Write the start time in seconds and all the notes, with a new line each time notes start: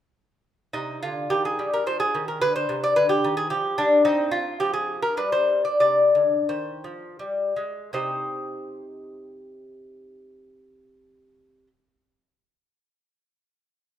0.73 C3 D#4
1.03 D3 F4
1.30 D#3 G4
1.45 G#4
1.59 G3
1.73 A#4
1.87 F3 C5
2.00 G#4
2.15 D#3
2.28 A#4
2.41 D3 B4
2.56 C5
2.69 C3
2.84 D5
2.96 D3 B4
3.09 G4
3.24 D#3
3.37 G#4
3.50 F3 G4
3.78 G3 D4
4.05 C4 D#4
4.31 F4
4.60 F3 G4
4.73 G#4
5.02 A#4
5.17 G3 B4
5.32 C5
5.65 D5
5.80 C3 D5
6.15 D3
6.49 D#3 C5
6.84 F3
7.19 G3
7.56 G#3
7.93 C3 D#4 G4 C5 D#5